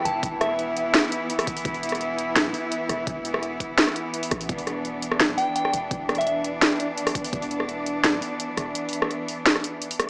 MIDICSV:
0, 0, Header, 1, 5, 480
1, 0, Start_track
1, 0, Tempo, 355030
1, 311, Time_signature, 4, 2, 24, 8
1, 13652, End_track
2, 0, Start_track
2, 0, Title_t, "Synth bell"
2, 0, Program_c, 0, 98
2, 69, Note_on_c, 0, 81, 87
2, 360, Note_off_c, 0, 81, 0
2, 550, Note_on_c, 0, 76, 91
2, 1030, Note_off_c, 0, 76, 0
2, 7268, Note_on_c, 0, 79, 89
2, 7497, Note_off_c, 0, 79, 0
2, 7513, Note_on_c, 0, 79, 88
2, 7592, Note_off_c, 0, 79, 0
2, 7639, Note_on_c, 0, 79, 79
2, 7711, Note_off_c, 0, 79, 0
2, 8359, Note_on_c, 0, 76, 89
2, 8431, Note_off_c, 0, 76, 0
2, 8474, Note_on_c, 0, 76, 74
2, 8552, Note_off_c, 0, 76, 0
2, 13652, End_track
3, 0, Start_track
3, 0, Title_t, "Cello section"
3, 0, Program_c, 1, 48
3, 0, Note_on_c, 1, 52, 82
3, 0, Note_on_c, 1, 59, 77
3, 0, Note_on_c, 1, 64, 92
3, 6043, Note_off_c, 1, 64, 0
3, 6071, Note_on_c, 1, 62, 90
3, 13652, Note_off_c, 1, 52, 0
3, 13652, Note_off_c, 1, 59, 0
3, 13652, Note_off_c, 1, 62, 0
3, 13652, End_track
4, 0, Start_track
4, 0, Title_t, "808-style bass"
4, 0, Program_c, 2, 38
4, 71, Note_on_c, 2, 28, 89
4, 292, Note_off_c, 2, 28, 0
4, 310, Note_on_c, 2, 28, 99
4, 1256, Note_off_c, 2, 28, 0
4, 2230, Note_on_c, 2, 28, 96
4, 3176, Note_off_c, 2, 28, 0
4, 3189, Note_on_c, 2, 26, 97
4, 3412, Note_off_c, 2, 26, 0
4, 3910, Note_on_c, 2, 28, 88
4, 4132, Note_off_c, 2, 28, 0
4, 4151, Note_on_c, 2, 28, 99
4, 5096, Note_off_c, 2, 28, 0
4, 5833, Note_on_c, 2, 33, 92
4, 6053, Note_off_c, 2, 33, 0
4, 6073, Note_on_c, 2, 28, 96
4, 7017, Note_off_c, 2, 28, 0
4, 7035, Note_on_c, 2, 26, 95
4, 7255, Note_off_c, 2, 26, 0
4, 7755, Note_on_c, 2, 28, 85
4, 7974, Note_off_c, 2, 28, 0
4, 7992, Note_on_c, 2, 28, 98
4, 8937, Note_off_c, 2, 28, 0
4, 9909, Note_on_c, 2, 28, 96
4, 10855, Note_off_c, 2, 28, 0
4, 10869, Note_on_c, 2, 26, 96
4, 11091, Note_off_c, 2, 26, 0
4, 11588, Note_on_c, 2, 28, 85
4, 11811, Note_off_c, 2, 28, 0
4, 13652, End_track
5, 0, Start_track
5, 0, Title_t, "Drums"
5, 73, Note_on_c, 9, 42, 82
5, 209, Note_off_c, 9, 42, 0
5, 311, Note_on_c, 9, 36, 122
5, 315, Note_on_c, 9, 42, 81
5, 446, Note_off_c, 9, 36, 0
5, 450, Note_off_c, 9, 42, 0
5, 554, Note_on_c, 9, 37, 78
5, 554, Note_on_c, 9, 42, 69
5, 690, Note_off_c, 9, 37, 0
5, 690, Note_off_c, 9, 42, 0
5, 795, Note_on_c, 9, 42, 38
5, 931, Note_off_c, 9, 42, 0
5, 1036, Note_on_c, 9, 42, 65
5, 1171, Note_off_c, 9, 42, 0
5, 1275, Note_on_c, 9, 37, 52
5, 1275, Note_on_c, 9, 38, 118
5, 1275, Note_on_c, 9, 42, 79
5, 1410, Note_off_c, 9, 37, 0
5, 1410, Note_off_c, 9, 38, 0
5, 1410, Note_off_c, 9, 42, 0
5, 1515, Note_on_c, 9, 42, 70
5, 1650, Note_off_c, 9, 42, 0
5, 1754, Note_on_c, 9, 42, 85
5, 1877, Note_on_c, 9, 37, 78
5, 1877, Note_on_c, 9, 46, 62
5, 1890, Note_off_c, 9, 42, 0
5, 1991, Note_on_c, 9, 36, 110
5, 1993, Note_on_c, 9, 42, 85
5, 2012, Note_off_c, 9, 37, 0
5, 2012, Note_off_c, 9, 46, 0
5, 2118, Note_on_c, 9, 46, 64
5, 2126, Note_off_c, 9, 36, 0
5, 2128, Note_off_c, 9, 42, 0
5, 2231, Note_on_c, 9, 36, 127
5, 2232, Note_on_c, 9, 42, 79
5, 2253, Note_off_c, 9, 46, 0
5, 2358, Note_on_c, 9, 46, 35
5, 2367, Note_off_c, 9, 36, 0
5, 2368, Note_off_c, 9, 42, 0
5, 2475, Note_on_c, 9, 42, 65
5, 2493, Note_off_c, 9, 46, 0
5, 2555, Note_off_c, 9, 42, 0
5, 2555, Note_on_c, 9, 42, 52
5, 2600, Note_on_c, 9, 37, 51
5, 2635, Note_off_c, 9, 42, 0
5, 2635, Note_on_c, 9, 42, 43
5, 2714, Note_off_c, 9, 42, 0
5, 2714, Note_on_c, 9, 42, 38
5, 2735, Note_off_c, 9, 37, 0
5, 2849, Note_off_c, 9, 42, 0
5, 2954, Note_on_c, 9, 42, 64
5, 3089, Note_off_c, 9, 42, 0
5, 3193, Note_on_c, 9, 37, 76
5, 3193, Note_on_c, 9, 38, 123
5, 3193, Note_on_c, 9, 42, 80
5, 3329, Note_off_c, 9, 37, 0
5, 3329, Note_off_c, 9, 38, 0
5, 3329, Note_off_c, 9, 42, 0
5, 3434, Note_on_c, 9, 46, 35
5, 3570, Note_off_c, 9, 46, 0
5, 3674, Note_on_c, 9, 42, 81
5, 3809, Note_off_c, 9, 42, 0
5, 3914, Note_on_c, 9, 37, 51
5, 3914, Note_on_c, 9, 42, 81
5, 4049, Note_off_c, 9, 37, 0
5, 4049, Note_off_c, 9, 42, 0
5, 4151, Note_on_c, 9, 36, 125
5, 4154, Note_on_c, 9, 42, 75
5, 4286, Note_off_c, 9, 36, 0
5, 4289, Note_off_c, 9, 42, 0
5, 4392, Note_on_c, 9, 42, 66
5, 4518, Note_on_c, 9, 37, 74
5, 4528, Note_off_c, 9, 42, 0
5, 4632, Note_on_c, 9, 42, 36
5, 4653, Note_off_c, 9, 37, 0
5, 4768, Note_off_c, 9, 42, 0
5, 4871, Note_on_c, 9, 36, 63
5, 4873, Note_on_c, 9, 42, 62
5, 5006, Note_off_c, 9, 36, 0
5, 5008, Note_off_c, 9, 42, 0
5, 5114, Note_on_c, 9, 38, 119
5, 5114, Note_on_c, 9, 42, 78
5, 5237, Note_on_c, 9, 37, 52
5, 5249, Note_off_c, 9, 38, 0
5, 5249, Note_off_c, 9, 42, 0
5, 5353, Note_on_c, 9, 42, 64
5, 5372, Note_off_c, 9, 37, 0
5, 5488, Note_off_c, 9, 42, 0
5, 5593, Note_on_c, 9, 42, 78
5, 5718, Note_on_c, 9, 46, 61
5, 5729, Note_off_c, 9, 42, 0
5, 5832, Note_on_c, 9, 36, 111
5, 5832, Note_on_c, 9, 37, 74
5, 5832, Note_on_c, 9, 42, 79
5, 5853, Note_off_c, 9, 46, 0
5, 5959, Note_on_c, 9, 46, 63
5, 5967, Note_off_c, 9, 36, 0
5, 5968, Note_off_c, 9, 37, 0
5, 5968, Note_off_c, 9, 42, 0
5, 6073, Note_on_c, 9, 36, 117
5, 6075, Note_on_c, 9, 42, 76
5, 6094, Note_off_c, 9, 46, 0
5, 6199, Note_on_c, 9, 46, 38
5, 6208, Note_off_c, 9, 36, 0
5, 6210, Note_off_c, 9, 42, 0
5, 6314, Note_on_c, 9, 37, 52
5, 6314, Note_on_c, 9, 42, 64
5, 6334, Note_off_c, 9, 46, 0
5, 6449, Note_off_c, 9, 37, 0
5, 6449, Note_off_c, 9, 42, 0
5, 6555, Note_on_c, 9, 42, 36
5, 6690, Note_off_c, 9, 42, 0
5, 6793, Note_on_c, 9, 42, 61
5, 6917, Note_on_c, 9, 37, 76
5, 6928, Note_off_c, 9, 42, 0
5, 7034, Note_on_c, 9, 38, 113
5, 7034, Note_on_c, 9, 42, 77
5, 7052, Note_off_c, 9, 37, 0
5, 7169, Note_off_c, 9, 38, 0
5, 7169, Note_off_c, 9, 42, 0
5, 7274, Note_on_c, 9, 46, 38
5, 7409, Note_off_c, 9, 46, 0
5, 7514, Note_on_c, 9, 42, 76
5, 7639, Note_on_c, 9, 37, 50
5, 7649, Note_off_c, 9, 42, 0
5, 7755, Note_on_c, 9, 42, 77
5, 7774, Note_off_c, 9, 37, 0
5, 7890, Note_off_c, 9, 42, 0
5, 7992, Note_on_c, 9, 36, 119
5, 7995, Note_on_c, 9, 42, 74
5, 8127, Note_off_c, 9, 36, 0
5, 8131, Note_off_c, 9, 42, 0
5, 8235, Note_on_c, 9, 37, 78
5, 8235, Note_on_c, 9, 42, 28
5, 8315, Note_off_c, 9, 42, 0
5, 8315, Note_on_c, 9, 42, 40
5, 8370, Note_off_c, 9, 37, 0
5, 8395, Note_off_c, 9, 42, 0
5, 8395, Note_on_c, 9, 42, 48
5, 8474, Note_off_c, 9, 42, 0
5, 8474, Note_on_c, 9, 42, 36
5, 8609, Note_off_c, 9, 42, 0
5, 8714, Note_on_c, 9, 42, 61
5, 8849, Note_off_c, 9, 42, 0
5, 8952, Note_on_c, 9, 37, 52
5, 8952, Note_on_c, 9, 38, 114
5, 8952, Note_on_c, 9, 42, 75
5, 9087, Note_off_c, 9, 37, 0
5, 9087, Note_off_c, 9, 38, 0
5, 9087, Note_off_c, 9, 42, 0
5, 9193, Note_on_c, 9, 42, 65
5, 9328, Note_off_c, 9, 42, 0
5, 9431, Note_on_c, 9, 42, 77
5, 9556, Note_on_c, 9, 37, 81
5, 9556, Note_on_c, 9, 46, 70
5, 9567, Note_off_c, 9, 42, 0
5, 9669, Note_on_c, 9, 36, 106
5, 9672, Note_on_c, 9, 42, 76
5, 9691, Note_off_c, 9, 37, 0
5, 9691, Note_off_c, 9, 46, 0
5, 9796, Note_on_c, 9, 46, 66
5, 9805, Note_off_c, 9, 36, 0
5, 9807, Note_off_c, 9, 42, 0
5, 9909, Note_on_c, 9, 36, 114
5, 9912, Note_on_c, 9, 42, 76
5, 9931, Note_off_c, 9, 46, 0
5, 10036, Note_on_c, 9, 46, 38
5, 10045, Note_off_c, 9, 36, 0
5, 10047, Note_off_c, 9, 42, 0
5, 10153, Note_on_c, 9, 42, 64
5, 10172, Note_off_c, 9, 46, 0
5, 10276, Note_on_c, 9, 37, 54
5, 10288, Note_off_c, 9, 42, 0
5, 10393, Note_on_c, 9, 42, 37
5, 10411, Note_off_c, 9, 37, 0
5, 10528, Note_off_c, 9, 42, 0
5, 10632, Note_on_c, 9, 42, 61
5, 10767, Note_off_c, 9, 42, 0
5, 10873, Note_on_c, 9, 37, 79
5, 10873, Note_on_c, 9, 38, 111
5, 10873, Note_on_c, 9, 42, 77
5, 11008, Note_off_c, 9, 37, 0
5, 11008, Note_off_c, 9, 38, 0
5, 11008, Note_off_c, 9, 42, 0
5, 11114, Note_on_c, 9, 46, 39
5, 11249, Note_off_c, 9, 46, 0
5, 11354, Note_on_c, 9, 42, 78
5, 11489, Note_off_c, 9, 42, 0
5, 11593, Note_on_c, 9, 37, 54
5, 11593, Note_on_c, 9, 42, 78
5, 11728, Note_off_c, 9, 37, 0
5, 11728, Note_off_c, 9, 42, 0
5, 11832, Note_on_c, 9, 42, 80
5, 11967, Note_off_c, 9, 42, 0
5, 12015, Note_on_c, 9, 46, 37
5, 12073, Note_on_c, 9, 42, 68
5, 12150, Note_off_c, 9, 46, 0
5, 12196, Note_on_c, 9, 37, 81
5, 12208, Note_off_c, 9, 42, 0
5, 12312, Note_on_c, 9, 42, 37
5, 12331, Note_off_c, 9, 37, 0
5, 12447, Note_off_c, 9, 42, 0
5, 12552, Note_on_c, 9, 46, 39
5, 12688, Note_off_c, 9, 46, 0
5, 12793, Note_on_c, 9, 38, 113
5, 12793, Note_on_c, 9, 42, 80
5, 12919, Note_on_c, 9, 37, 57
5, 12928, Note_off_c, 9, 38, 0
5, 12928, Note_off_c, 9, 42, 0
5, 13034, Note_on_c, 9, 42, 68
5, 13054, Note_off_c, 9, 37, 0
5, 13169, Note_off_c, 9, 42, 0
5, 13273, Note_on_c, 9, 42, 80
5, 13396, Note_on_c, 9, 46, 66
5, 13408, Note_off_c, 9, 42, 0
5, 13514, Note_on_c, 9, 37, 84
5, 13514, Note_on_c, 9, 42, 81
5, 13531, Note_off_c, 9, 46, 0
5, 13650, Note_off_c, 9, 37, 0
5, 13650, Note_off_c, 9, 42, 0
5, 13652, End_track
0, 0, End_of_file